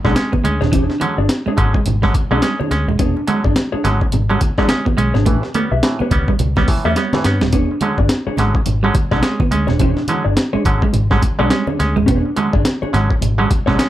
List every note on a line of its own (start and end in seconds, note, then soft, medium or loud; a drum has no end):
0.05 0.14 B1 medium
0.05 0.15 D3 medium
0.05 0.16 F#3 medium
0.05 0.12 G#3 medium
0.05 0.15 G#3 medium
0.05 0.15 C#4 medium
0.05 0.15 D4 medium
0.05 0.15 G#4 medium
0.05 0.17 D5 medium
0.05 kick medium
0.05 snare soft
0.16 0.32 G#3 medium
0.16 0.33 C#4 medium
0.16 muted clean electric guitar stroke medium
0.16 snare medium
0.16 closed hi-hat medium
0.16 muted conga soft
0.32 0.40 B3 medium
0.32 muted clean electric guitar stroke medium
0.32 kick medium
0.32 muted conga soft
0.32 high conga medium
0.44 0.58 D2 medium
0.44 0.55 G#3 medium
0.44 0.61 G#3 medium
0.44 0.61 C#4 medium
0.44 closed hi-hat medium
0.61 0.73 D#1 medium
0.61 0.72 D4 medium
0.61 0.72 G#4 medium
0.61 0.73 C#5 medium
0.61 snare soft
0.61 low conga medium
0.72 0.86 E1 loud
0.72 0.83 E3 loud
0.72 0.95 D4 medium
0.72 0.89 G#4 medium
0.72 0.88 C#5 medium
0.72 kick loud
0.72 closed hi-hat medium
0.72 low conga medium
0.89 0.94 G#3 soft
0.89 0.94 C#4 soft
0.89 muted clean electric guitar stroke soft
0.89 snare soft
0.89 muted conga soft
1.00 1.17 D3 medium
1.00 1.11 E3 medium
1.00 1.18 F#3 medium
1.00 1.18 G#3 medium
1.00 1.18 C#4 medium
1.00 muted clean electric guitar stroke soft
1.00 closed hi-hat medium
1.00 high conga medium
1.18 1.27 G1 medium
1.18 1.28 D4 soft
1.18 1.29 G#4 medium
1.18 1.30 D5 medium
1.29 muted clean electric guitar stroke soft
1.29 snare loud
1.29 closed hi-hat medium
1.29 muted conga soft
1.46 1.53 G#3 medium
1.46 1.57 D4 medium
1.46 1.58 G#4 medium
1.46 1.58 C#5 medium
1.46 muted fingered electric bass stroke soft
1.46 muted conga soft
1.57 1.71 G#1 medium
1.57 1.74 D3 medium
1.57 1.74 F#3 medium
1.57 1.74 G#3 medium
1.57 1.74 C#4 medium
1.57 muted clean electric guitar stroke soft
1.57 kick medium
1.57 closed hi-hat medium
1.57 high conga medium
1.74 1.81 G#3 medium
1.74 1.79 G#3 soft
1.74 1.79 C#4 soft
1.74 muted clean electric guitar stroke soft
1.74 kick medium
1.86 2.09 G#1 medium
1.86 muted clean electric guitar stroke soft
1.86 closed hi-hat medium
1.86 low conga medium
2.02 2.14 D3 medium
2.02 2.14 F#3 medium
2.02 2.10 G3 medium
2.02 2.14 G#3 medium
2.02 2.14 C#4 medium
2.02 muted clean electric guitar stroke medium
2.02 kick medium
2.02 snare soft
2.14 muted clean electric guitar stroke soft
2.14 kick loud
2.14 closed hi-hat medium
2.14 high conga medium
2.31 2.40 B1 medium
2.31 2.42 D3 medium
2.31 2.42 F#3 medium
2.31 2.38 G#3 medium
2.31 2.41 G#3 medium
2.31 2.42 C#4 medium
2.31 2.42 D4 medium
2.31 2.42 G#4 medium
2.31 2.43 D5 medium
2.42 2.53 G3 medium
2.42 2.59 G#3 medium
2.42 2.59 C#4 medium
2.42 muted clean electric guitar stroke soft
2.42 snare loud
2.42 closed hi-hat medium
2.42 muted conga soft
2.60 2.70 D4 medium
2.60 2.71 G#4 medium
2.60 2.71 C#5 medium
2.60 high conga medium
2.71 2.84 D2 medium
2.71 2.87 G#3 medium
2.71 2.88 C#4 medium
2.71 muted clean electric guitar stroke soft
2.71 snare soft
2.71 closed hi-hat medium
2.88 2.97 D#1 medium
2.88 2.96 G#3 medium
2.88 muted clean electric guitar stroke soft
2.88 low conga medium
2.99 3.13 E1 loud
2.99 3.10 B3 medium
2.99 3.22 D4 medium
2.99 3.16 G#4 medium
2.99 3.15 C#5 medium
2.99 kick loud
2.99 closed hi-hat medium
2.99 low conga medium
3.16 3.21 G#3 soft
3.16 3.21 C#4 soft
3.16 muted clean electric guitar stroke soft
3.16 muted conga soft
3.27 3.44 D3 medium
3.27 3.44 F#3 medium
3.27 3.44 G#3 medium
3.27 3.39 G#3 medium
3.27 3.44 C#4 medium
3.27 muted clean electric guitar stroke soft
3.27 closed hi-hat medium
3.27 high conga medium
3.44 3.54 G1 medium
3.44 3.55 D4 soft
3.44 3.55 G#4 soft
3.44 3.56 D5 medium
3.44 muted clean electric guitar stroke soft
3.44 kick medium
3.56 muted clean electric guitar stroke soft
3.56 snare loud
3.56 closed hi-hat medium
3.72 3.83 D4 medium
3.72 3.84 G#4 medium
3.72 3.84 C#5 medium
3.72 muted fingered electric bass stroke soft
3.84 3.98 G#1 medium
3.84 4.01 D3 medium
3.84 4.01 F#3 medium
3.84 4.01 G#3 medium
3.84 3.95 G#3 medium
3.84 4.01 C#4 medium
3.84 snare soft
3.84 closed hi-hat medium
3.84 high conga medium
4.01 4.06 G#3 soft
4.01 4.06 C#4 soft
4.01 muted clean electric guitar stroke soft
4.01 kick medium
4.12 4.35 G#1 medium
4.12 muted clean electric guitar stroke soft
4.12 closed hi-hat medium
4.12 muted conga soft
4.12 low conga medium
4.29 4.41 D3 medium
4.29 4.41 F#3 medium
4.29 4.37 G3 medium
4.29 4.41 G#3 medium
4.29 4.41 C#4 medium
4.29 muted clean electric guitar stroke soft
4.29 muted conga soft
4.41 muted clean electric guitar stroke soft
4.41 kick medium
4.41 closed hi-hat medium
4.41 high conga medium
4.58 4.69 D3 medium
4.58 4.69 F#3 medium
4.58 4.65 G#3 medium
4.58 4.68 G#3 medium
4.58 4.68 C#4 medium
4.58 4.68 D4 medium
4.58 4.69 G#4 medium
4.58 4.70 D5 loud
4.58 kick medium
4.58 snare soft
4.69 4.86 G#3 medium
4.69 4.86 C#4 medium
4.69 muted clean electric guitar stroke soft
4.69 snare loud
4.69 closed hi-hat medium
4.69 muted conga soft
4.85 4.93 B3 medium
4.85 muted clean electric guitar stroke soft
4.85 kick medium
4.85 high conga medium
4.97 5.11 B1 medium
4.97 5.08 G#3 medium
4.97 5.14 G#3 medium
4.97 5.14 C#4 medium
4.97 closed hi-hat medium
5.14 5.24 G#1 loud
5.14 5.34 D4 medium
5.14 5.26 G#4 medium
5.14 5.26 C#5 medium
5.14 snare soft
5.14 low conga medium
5.26 5.40 A1 loud
5.26 5.43 A2 medium
5.26 5.43 E3 medium
5.26 5.37 A3 medium
5.26 5.48 G4 medium
5.26 5.43 B4 medium
5.26 kick loud
5.26 closed hi-hat medium
5.26 low conga medium
5.43 5.48 B3 soft
5.43 5.48 C#4 soft
5.43 muted clean electric guitar stroke soft
5.43 snare soft
5.54 5.71 G3 medium
5.54 5.65 A3 medium
5.54 5.71 B3 medium
5.54 5.71 C#4 medium
5.54 muted clean electric guitar stroke soft
5.54 closed hi-hat medium
5.54 high conga medium
5.71 5.81 B1 medium
5.71 5.82 G4 soft
5.71 5.83 B4 soft
5.71 5.84 E5 medium
5.83 6.00 A2 medium
5.83 6.00 E3 soft
5.83 muted clean electric guitar stroke soft
5.83 snare loud
5.83 closed hi-hat medium
5.99 6.07 B3 medium
5.99 6.11 G4 medium
5.99 6.12 B4 medium
5.99 6.12 C#5 medium
5.99 muted fingered electric bass stroke soft
5.99 muted conga soft
6.11 6.25 C#2 medium
6.11 6.28 G3 medium
6.11 6.27 B3 medium
6.11 6.27 C#4 medium
6.11 muted clean electric guitar stroke medium
6.11 kick medium
6.11 closed hi-hat medium
6.11 high conga medium
6.28 6.35 G3 medium
6.28 6.33 B3 soft
6.28 6.33 C#4 soft
6.28 muted clean electric guitar stroke medium
6.28 kick medium
6.39 6.63 C#2 medium
6.39 muted clean electric guitar stroke soft
6.39 closed hi-hat medium
6.39 high conga medium
6.39 low conga medium
6.56 6.64 G3 medium
6.56 6.68 G3 medium
6.56 6.68 B3 medium
6.56 6.68 C#4 medium
6.56 muted clean electric guitar stroke soft
6.56 kick medium
6.56 snare soft
6.56 muted conga soft
6.68 6.85 A2 medium
6.68 6.85 E3 medium
6.68 muted clean electric guitar stroke soft
6.68 kick medium
6.68 open hi-hat medium
6.68 high conga medium
6.85 6.94 E2 medium
6.85 6.96 G3 medium
6.85 6.92 A3 medium
6.85 6.96 B3 medium
6.85 6.96 C#4 medium
6.85 6.95 G4 medium
6.85 6.96 B4 medium
6.85 6.97 E5 medium
6.96 7.07 G3 medium
6.96 7.13 B3 medium
6.96 7.13 C#4 medium
6.96 muted clean electric guitar stroke soft
6.96 snare medium
6.96 closed hi-hat medium
7.13 7.25 A2 medium
7.13 7.25 E3 medium
7.13 7.24 G4 medium
7.13 7.24 B4 medium
7.13 7.25 C#5 medium
7.13 snare medium
7.13 muted conga soft
7.13 high conga medium
7.24 7.38 G2 medium
7.24 7.42 B3 medium
7.24 7.42 C#4 medium
7.24 muted clean electric guitar stroke soft
7.24 snare medium
7.24 closed hi-hat medium
7.41 7.53 D#1 medium
7.41 7.49 G3 medium
7.41 muted clean electric guitar stroke soft
7.41 snare medium
7.41 low conga medium
7.53 7.67 E1 loud
7.53 7.64 B3 loud
7.53 7.75 D4 medium
7.53 7.71 G#4 medium
7.53 7.69 C#5 medium
7.53 kick loud
7.53 closed hi-hat medium
7.53 muted conga soft
7.53 low conga medium
7.71 7.75 G#3 soft
7.71 7.75 C#4 soft
7.71 muted clean electric guitar stroke soft
7.81 7.98 D3 medium
7.81 7.98 F#3 medium
7.81 7.92 G#3 medium
7.81 7.99 G#3 medium
7.81 7.99 C#4 medium
7.81 muted clean electric guitar stroke soft
7.81 closed hi-hat medium
7.81 high conga medium
7.97 8.07 G1 medium
7.97 8.09 D4 soft
7.97 8.10 G#4 soft
7.97 8.10 D5 soft
7.97 muted clean electric guitar stroke soft
7.97 kick medium
8.09 muted clean electric guitar stroke soft
8.09 snare loud
8.09 closed hi-hat medium
8.09 muted conga soft
8.27 8.36 D4 medium
8.27 8.37 G#4 medium
8.27 8.37 C#5 medium
8.27 muted fingered electric bass stroke soft
8.37 8.52 G#1 medium
8.37 8.55 D3 medium
8.37 8.55 F#3 medium
8.37 8.49 G#3 medium
8.37 8.55 G#3 medium
8.37 8.55 C#4 medium
8.37 muted clean electric guitar stroke soft
8.37 snare soft
8.37 closed hi-hat medium
8.37 high conga medium
8.55 8.60 G#3 soft
8.55 8.60 C#4 soft
8.55 muted clean electric guitar stroke soft
8.55 kick medium
8.66 8.89 G#1 medium
8.66 muted clean electric guitar stroke soft
8.66 closed hi-hat medium
8.66 low conga medium
8.83 8.95 D3 medium
8.83 8.95 F#3 medium
8.83 8.90 G3 medium
8.83 8.95 G#3 medium
8.83 8.95 C#4 medium
8.83 muted clean electric guitar stroke soft
8.94 muted clean electric guitar stroke soft
8.94 kick medium
8.94 closed hi-hat medium
8.94 high conga medium
9.11 9.21 B1 medium
9.11 9.23 D3 medium
9.11 9.23 F#3 medium
9.11 9.22 G#3 medium
9.11 9.20 G#3 medium
9.11 9.23 C#4 medium
9.11 9.21 D4 medium
9.11 9.22 G#4 medium
9.11 9.23 D5 medium
9.11 kick medium
9.11 snare soft
9.23 9.40 G#3 medium
9.23 9.40 C#4 medium
9.23 muted clean electric guitar stroke soft
9.23 snare loud
9.23 closed hi-hat medium
9.23 muted conga soft
9.40 9.48 B3 medium
9.40 muted clean electric guitar stroke soft
9.40 kick loud
9.40 muted conga soft
9.40 high conga medium
9.51 9.65 D2 medium
9.51 9.68 G#3 medium
9.51 9.63 G#3 medium
9.51 9.69 C#4 medium
9.51 closed hi-hat medium
9.67 9.80 D#1 medium
9.67 9.78 D4 medium
9.67 9.79 G#4 medium
9.67 9.79 C#5 medium
9.67 snare soft
9.67 low conga medium
9.79 9.94 E1 loud
9.79 9.92 E3 medium
9.79 10.02 D4 medium
9.79 9.97 G#4 medium
9.79 9.95 C#5 medium
9.79 kick loud
9.79 closed hi-hat medium
9.79 low conga medium
9.97 10.02 G#3 soft
9.97 10.02 C#4 soft
9.97 muted clean electric guitar stroke soft
9.97 snare soft
9.97 muted conga soft
10.08 10.25 D3 medium
10.08 10.20 E3 medium
10.08 10.25 F#3 medium
10.08 10.25 G#3 medium
10.08 10.26 C#4 medium
10.08 muted clean electric guitar stroke soft
10.08 closed hi-hat medium
10.08 high conga medium
10.25 10.35 G1 medium
10.25 10.35 D4 soft
10.25 10.36 G#4 soft
10.25 10.37 D5 medium
10.37 muted clean electric guitar stroke soft
10.37 snare loud
10.37 closed hi-hat medium
10.53 10.61 G#3 medium
10.53 10.63 D4 medium
10.53 10.64 G#4 medium
10.53 10.64 C#5 medium
10.53 muted fingered electric bass stroke medium
10.65 10.79 G#1 medium
10.65 10.82 D3 medium
10.65 10.82 F#3 medium
10.65 10.82 G#3 medium
10.65 10.82 C#4 medium
10.65 muted clean electric guitar stroke medium
10.65 kick medium
10.65 closed hi-hat medium
10.65 high conga medium
10.82 10.87 G#3 soft
10.82 10.90 G#3 medium
10.82 10.87 C#4 soft
10.82 muted clean electric guitar stroke medium
10.82 kick medium
10.93 11.17 G#1 medium
10.93 muted clean electric guitar stroke soft
10.93 closed hi-hat medium
10.93 muted conga soft
10.93 low conga medium
11.11 11.22 D3 medium
11.11 11.22 F#3 medium
11.11 11.19 G3 medium
11.11 11.22 G#3 medium
11.11 11.22 C#4 medium
11.11 muted clean electric guitar stroke soft
11.11 kick medium
11.11 snare soft
11.22 muted clean electric guitar stroke soft
11.22 kick medium
11.22 closed hi-hat medium
11.22 high conga medium
11.39 11.49 B1 medium
11.39 11.50 D3 medium
11.39 11.50 F#3 medium
11.39 11.49 G#3 medium
11.39 11.48 G#3 medium
11.39 11.49 C#4 medium
11.39 11.50 D4 medium
11.39 11.50 G#4 medium
11.39 11.51 D5 loud
11.50 11.62 G3 medium
11.50 11.67 G#3 medium
11.50 11.67 C#4 medium
11.50 muted clean electric guitar stroke soft
11.50 snare medium
11.50 closed hi-hat medium
11.67 11.77 D4 medium
11.67 11.78 G#4 medium
11.67 11.78 C#5 medium
11.67 muted conga soft
11.67 high conga medium
11.78 11.93 D2 loud
11.78 11.96 G#3 medium
11.78 11.96 C#4 medium
11.78 muted clean electric guitar stroke soft
11.78 snare soft
11.78 closed hi-hat medium
11.96 12.06 D#1 medium
11.96 12.04 G#3 medium
11.96 muted clean electric guitar stroke soft
11.96 low conga medium
12.06 12.22 E1 loud
12.06 12.19 B3 medium
12.06 12.29 D4 medium
12.06 12.23 G#4 medium
12.06 12.23 C#5 medium
12.06 kick loud
12.06 closed hi-hat medium
12.06 low conga medium
12.24 12.30 G#3 soft
12.24 12.30 C#4 soft
12.24 muted clean electric guitar stroke soft
12.36 12.53 D3 medium
12.36 12.53 F#3 medium
12.36 12.53 G#3 medium
12.36 12.48 G#3 medium
12.36 12.53 C#4 medium
12.36 muted clean electric guitar stroke soft
12.36 closed hi-hat medium
12.36 high conga medium
12.53 12.63 G1 medium
12.53 12.64 D4 soft
12.53 12.64 G#4 medium
12.53 12.66 D5 medium
12.53 muted clean electric guitar stroke soft
12.53 kick loud
12.65 muted clean electric guitar stroke soft
12.65 snare loud
12.65 closed hi-hat medium
12.65 muted conga soft
12.82 12.92 D4 medium
12.82 12.92 G#4 medium
12.82 12.93 C#5 medium
12.82 muted fingered electric bass stroke soft
12.82 muted conga soft
12.93 13.07 G#1 loud
12.93 13.10 D3 medium
12.93 13.10 F#3 medium
12.93 13.09 G#3 medium
12.93 13.05 G#3 medium
12.93 13.09 C#4 medium
12.93 muted clean electric guitar stroke soft
12.93 snare soft
12.93 closed hi-hat medium
12.93 high conga medium
13.10 13.15 G#3 soft
13.10 13.15 C#4 soft
13.10 muted clean electric guitar stroke soft
13.10 kick medium
13.21 13.45 G#1 medium
13.21 muted clean electric guitar stroke soft
13.21 closed hi-hat medium
13.21 low conga medium
13.38 13.49 D3 medium
13.38 13.50 F#3 medium
13.38 13.47 G3 medium
13.38 13.50 G#3 medium
13.38 13.50 C#4 medium
13.38 muted clean electric guitar stroke soft
13.51 muted clean electric guitar stroke soft
13.51 kick loud
13.51 closed hi-hat medium
13.51 high conga medium
13.66 13.77 B1 medium
13.66 13.78 D3 medium
13.66 13.78 F#3 medium
13.66 13.77 G#3 medium
13.66 13.75 G#3 medium
13.66 13.78 C#4 medium
13.66 13.77 D4 medium
13.66 13.77 G#4 medium
13.66 13.79 D5 medium
13.66 kick medium
13.66 snare soft
13.78 13.89 G#3 medium
13.78 13.89 C#4 medium
13.78 muted clean electric guitar stroke soft
13.78 snare medium
13.78 closed hi-hat medium